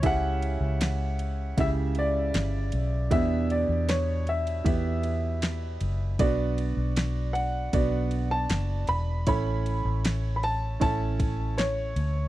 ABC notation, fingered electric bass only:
X:1
M:4/4
L:1/16
Q:1/4=78
K:Bm
V:1 name="Fingered electric bass" clef=bass
C,,3 C,,4- C,, C,,4 G,,,2 B,,,2 | E,,3 E,,4- E,, E,,6 F,,,2 | B,,,3 B,,,4- B,,, B,,,4 F,,,2 E,,,2 | A,,,3 A,,,4- A,,, A,,,6 D,,2 |]